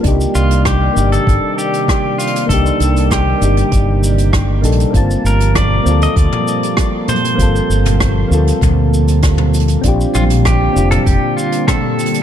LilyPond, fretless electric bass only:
\new Staff \with { instrumentName = "Fretless electric bass" } { \clef bass \time 4/4 \key g \minor \tempo 4 = 98 c,8 c,4 g,,8 g,,8 r4. | c,8 c,4 g,,8 g,,4. bes,,8 | g,,8 g,,4 d,8 d,8 r4. | g,,8 g,,4 d,8 d,2 |
bes,,8 bes,,4 f,,8 f,,8 r4. | }